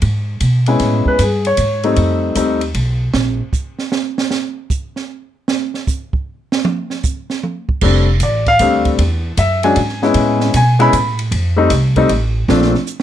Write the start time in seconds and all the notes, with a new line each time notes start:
0.02 G#2, kick, ride
0.40 B2, kick, hi-hat pedal, ride
0.66 G#3 B3 C#4 E4, ride
0.79 A2, kick, snare, ride
1.06 B4, muted upright bass stroke, kick
1.19 G2 G#4, kick, hi-hat pedal, ride
1.45 C#5, ride
1.57 G#2, kick, hi-hat pedal, ride
1.83 G3 A3 C4 D#4, ride
1.96 F2, kick, ride
2.35 D#2 G3 A3 C4 D#4, kick, hi-hat pedal, ride
2.61 ride
2.74 B1, kick, ride
3.14 A#1, snare
3.53 kick, hi-hat pedal
3.79 snare
3.92 snare
4.18 snare
4.31 snare
4.70 kick, hi-hat pedal
4.96 snare
5.48 snare
5.74 snare
5.87 kick, hi-hat pedal
6.13 kick
6.52 snare
6.65 mid tom
6.90 snare
7.03 kick, hi-hat pedal
7.30 snare
7.43 mid tom
7.69 kick
7.81 F1 G3 A3 C4 D4, kick, crash
8.20 A1 D5, kick, hi-hat pedal, ride
8.46 F5, kick, ride
8.59 D2 G3 A3 C4 D4, kick, hi-hat pedal, ride
8.85 kick, ride
8.98 E2, kick, ride
9.37 F#2 E5, kick, hi-hat pedal, ride
9.63 F#3 G#3 C#4 D4 G#5, ride
9.76 G#2, kick, ride
9.89 snare
10.02 G#3 B3 C#4 E4, snare
10.14 A2, kick, ride
10.40 snare
10.54 B2 G#5, kick, hi-hat pedal, ride
10.79 G#3 B3 C#4 E4 B5, ride
10.93 A2, kick, hi-hat pedal, ride
11.19 ride
11.31 F2, kick, ride
11.56 G3 A3 C4 D#4
11.70 C2, kick, snare, hi-hat pedal, ride
11.96 G3 A3 C4 D#4, kick, ride
12.09 A1, kick, ride
12.48 A#1 F3 A3 C4 D4, snare
12.62 snare
12.75 snare
12.87 hi-hat pedal